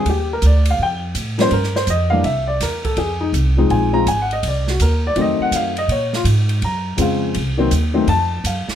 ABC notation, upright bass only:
X:1
M:4/4
L:1/8
Q:"Swing" 1/4=165
K:Fphr
V:1 name="Upright bass" clef=bass
E,,2 =D,,2 F,,2 =A,,2 | =G,,2 F,,2 C,,2 =E,,2 | F,,2 C,,2 B,,,2 A,,,2 | C,,2 E,,2 F,, z G,,2 |
B,,2 A,,2 G,,2 F,,2 | C,,2 E,,2 F,,2 G,, z |]